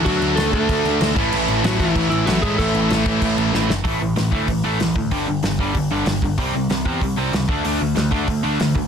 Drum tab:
CC |xxxxxxxx|xxxxxxxx|xxxxxx--|--------|
HH |--------|--------|--------|o-o-o-o-|
SD |--o---o-|--o---o-|--o---oo|--o---o-|
BD |o--oo--o|---oo--o|o--oo---|o--oo--o|

CC |--------|--------|--------|
HH |o-o-o-o-|o-o-o-o-|o-o-o-o-|
SD |--o---o-|--o---o-|--o---o-|
BD |o--oo--o|o--oo--o|---oo--o|